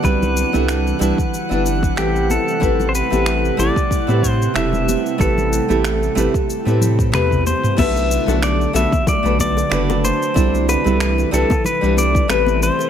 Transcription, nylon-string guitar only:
X:1
M:4/4
L:1/16
Q:"Swing 16ths" 1/4=93
K:Clyd
V:1 name="Nylon-string guitar"
[G,CDEB]3 [G,CDEA]3 [G,CDEB] z2 [G,CDEB]3 [A,CEGB]4 | [A,CEGB]3 [A,CEGA]3 [A,CEGB] z2 [A,CEGB]3 [A,CEGB]4 | [A,CEGB]3 [A,CEGA]3 [A,CEGB] z2 [A,CEGB]3 [A,CEGB]4 | [A,B,DFB]3 [A,B,DFA]3 [A,B,DFB] z2 [A,B,DFB]3 [A,B,DFB]4 |
[G,CDEc]3 [G,CDEA]3 [G,CDEB] z2 [G,CDEB]3 [A,CEGB]4 |]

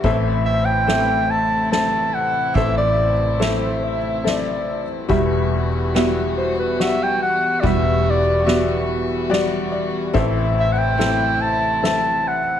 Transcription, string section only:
X:1
M:3/4
L:1/8
Q:1/4=71
K:Ador
V:1 name="String section"
[C,E,A,E]6- | [C,E,A,E]6 | [E,G,B,F]6- | [E,G,B,F]6 |
[C,A,E]6 |]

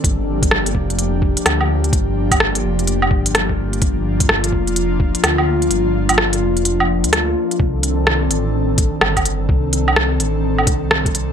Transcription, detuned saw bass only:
X:1
M:4/4
L:1/16
Q:"Swing 16ths" 1/4=127
K:Cdor
V:1 name="Detuned saw bass" clef=bass
G,,,6 F,,,4- F,,, z D,,4 | G,,,6 F,,,4 G,,,6 | G,,,6 F,,,4- F,,, z D,,4 | G,,,6 F,,,4- F,,, D,,3 z2 |
C,,6 A,,,4- A,,, z G,,,4 | C,,6 A,,,4 C,,6 |]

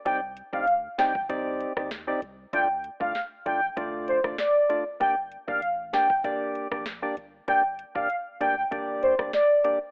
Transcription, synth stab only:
X:1
M:4/4
L:1/16
Q:1/4=97
K:Gm
V:1 name="Synth stab"
[CEGd] z2 [CEGd] z2 [CEGd] z [CEGd]3 [CEGd] z [CEGd] z2 | [A,DFd] z2 [A,DFd] z2 [A,DFd] z [A,DFd]3 [A,DFd] z2 [A,DFd] z | [B,DGd] z2 [B,DGd] z2 [B,DGd] z [B,DGd]3 [B,DGd] z [B,DGd] z2 | [B,DGd] z2 [B,DGd] z2 [B,DGd] z [B,DGd]3 [B,DGd] z2 [B,DGd] z |]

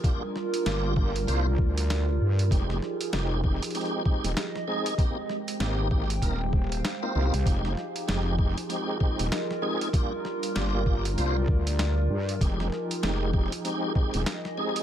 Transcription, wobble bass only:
X:1
M:4/4
L:1/16
Q:"Swing 16ths" 1/4=97
K:Fdor
V:1 name="Wobble bass" clef=bass
z4 G,,,4 C,,2 D,,4 G,,2 | F,,,2 z2 F,,,3 z4 E,,, z4 | z4 A,,,4 E,,,4 z2 C,, C,, | F,,,2 z2 F,,,3 z4 E,,, z4 |
z4 G,,,4 C,,2 D,,4 G,,2 | F,,,2 z2 F,,,3 z4 E,,, z4 |]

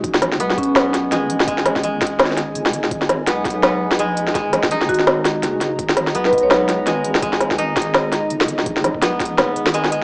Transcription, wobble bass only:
X:1
M:4/4
L:1/8
Q:"Swing 16ths" 1/4=167
K:G#m
V:1 name="Wobble bass" clef=bass
G,,,2 B,,,4 G,,,2 | G,,,3 G,,,3 F,,,2 | G,,,2 B,,,4 A,,,2 | G,,,3 G,,,3 F,,,2 |
G,,,2 B,,,4 G,,,2 | G,,,3 G,,,3 F,,,2 | G,,,2 A,,,3 G,,,3 |]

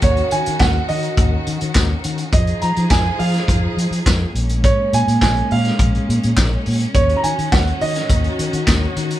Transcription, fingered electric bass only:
X:1
M:4/4
L:1/16
Q:1/4=104
K:Ebm
V:1 name="Fingered electric bass" clef=bass
E,,2 E, E, E,,2 E,2 E,,2 E, E, E,,2 E,2 | F,,2 F, F, F,,2 F,2 F,,2 F, F, F,,2 B,,,2- | B,,,2 B,, B,, B,,,2 B,,2 B,,,2 B,, B,, B,,,2 B,,2 | E,,2 E, E, E,,2 E,2 E,,2 E, E, E,,2 E,2 |]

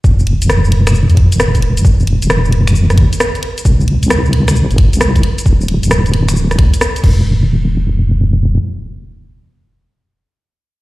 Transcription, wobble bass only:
X:1
M:4/4
L:1/16
Q:"Swing 16ths" 1/4=133
K:Clyd
V:1 name="Wobble bass" clef=bass
E,,,3 E,,,6 E,,2 E,,,4- E,,, | E,,,3 E,,,6- E,,, E,, z4 z | C,,3 C,,6 G,,,2 C,,3 z2 | D,,,3 D,,,6- D,,, D,, z3 E,,,2- |
E,,,12 z4 | z16 |]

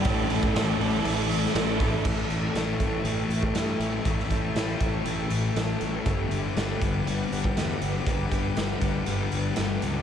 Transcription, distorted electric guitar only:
X:1
M:4/4
L:1/8
Q:1/4=120
K:Amix
V:1 name="Distorted electric guitar" clef=bass
[A,,E,A,] [E,A,] [A,,E,A,]2 [A,,E,A,] [E,A,] [A,,E,A,] [E,A,] | [A,,E,A,]2 [A,,E,A,]2 [A,,E,A,]2 [A,,E,A,]2 | [A,,E,A,]2 [A,,E,A,]2 [A,,E,A,]2 [A,,E,A,]2 | [G,,D,G,]2 [G,,D,G,]2 [G,,D,G,]2 [G,,D,G,]2 |
[G,,D,G,]2 [G,,D,G,]2 [G,,D,G,]2 [G,,D,G,]2 |]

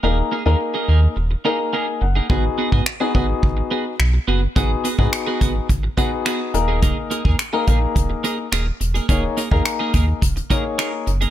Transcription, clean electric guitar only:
X:1
M:4/4
L:1/16
Q:1/4=106
K:G#m
V:1 name="Clean electric guitar"
[A,DG] z [A,DG] [A,DG] z [A,DG] [A,DG] z3 [A,DG] z [A,DG] z2 [A,DG] | [B,FG] z [B,FG] [B,FG] z [B,FG] [B,FG] z3 [B,FG] z3 [B,FG] z | [B,FG] z [B,FG] [B,FG] z [B,FG] [B,FG] z3 [B,FG] z [B,FG] z2 [A,DG] | [A,DG] z [A,DG] [A,DG] z [A,DG] [A,DG] z3 [A,DG] z [A,DG] z2 [A,DG] |
[A,DG] z [A,DG] [A,DG] z [A,DG] [A,DG] z3 [A,DG] z [A,DG] z2 [A,DG] |]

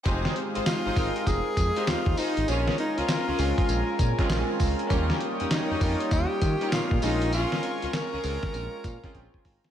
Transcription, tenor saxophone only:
X:1
M:4/4
L:1/16
Q:"Swing 16ths" 1/4=99
K:Bbdor
V:1 name="Tenor saxophone"
z4 F4 A4 F2 E2 | D2 E F8 z4 z | z4 E4 G4 F2 E2 | F4 B8- B2 z2 |]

